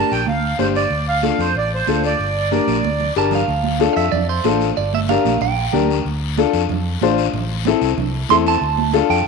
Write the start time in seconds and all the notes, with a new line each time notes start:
Already playing: D4 G4 A#4 A5
0.12 A#1 G5, short guiro
0.27 D2 F5, high conga, long guiro
0.58 G1 D4 G4 C5, high conga, short guiro
0.75 D5, short guiro
0.90 D2, long guiro
1.08 F5
1.23 D4 F4 A4, high conga, short guiro
1.38 F2 C5, short guiro
1.54 A1 D5, long guiro
1.74 C5
1.87 D2 D4 F4 A4, high conga, short guiro
2.04 D5, short guiro
2.19 G1, long guiro
2.51 D4 G4 A#4, high conga, short guiro
2.67 A#1, high conga, short guiro
2.83 D2, high conga, long guiro
3.00 low conga
3.16 G1 D4 G4 A#4 A5, short guiro
3.31 F5, low conga, short guiro
3.47 D2, high conga, long guiro
3.63 high conga
3.80 D4 F4 A4, high conga, short guiro
3.93 F2 E5 F5, short guiro
4.12 F2 D5, high conga, low conga, long guiro
4.29 C5
4.44 A1 D4 F4 A4, high conga, short guiro
4.61 short guiro
4.77 G1 D5, high conga, long guiro
4.93 E5, high conga
5.09 D4 G4 A#4 F5, high conga, short guiro
5.25 A#1, high conga, short guiro
5.41 A#1 G5, high conga, low conga, long guiro
5.73 D2 D4 G4 A#4, high conga, low conga, short guiro
5.91 short guiro
6.05 D2, high conga, long guiro
6.38 D4 F4 A4, high conga, short guiro
6.53 F2, short guiro
6.69 F2, high conga, low conga, long guiro
7.01 A1 D4 F4 C5, high conga, short guiro
7.18 short guiro
7.33 A1, high conga, low conga, long guiro
7.65 C4 E4 A4, high conga, short guiro
7.81 C2, short guiro
7.97 C2, high conga, low conga, long guiro
8.29 E2 C4 E4 A4 C6, high conga, short guiro
8.46 A5, short guiro
8.61 D2, high conga, long guiro
8.78 high conga
8.93 D4 F4 A4, high conga, short guiro
9.09 F2 G5, short guiro